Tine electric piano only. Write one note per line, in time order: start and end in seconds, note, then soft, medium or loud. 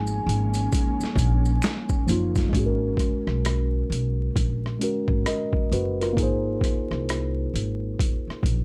0.00 2.02 F3 medium
0.00 2.04 A#3 medium
0.00 2.05 D#4 medium
0.00 2.10 G#4 medium
2.07 2.52 F3 medium
2.07 2.53 A#3 medium
2.07 2.54 D#4 soft
2.11 2.55 F4 medium
2.49 4.74 G#3 medium
2.49 4.76 C#4 medium
2.56 4.78 F#4 medium
2.56 2.64 G#4 medium
2.66 4.83 A#4 medium
4.79 6.16 G#3 soft
4.79 6.17 C#4 soft
4.79 5.27 F#4 soft
4.84 5.26 A#4 soft
5.27 5.70 A#4 soft
5.27 5.69 D#5 soft
5.73 5.99 F#4 soft
5.73 5.99 B4 medium
6.01 6.44 F4 soft
6.01 6.43 A#4 medium
6.13 8.64 A#3 medium
6.13 8.64 D#4 medium
6.20 8.64 G#4 medium
6.20 8.64 C5 medium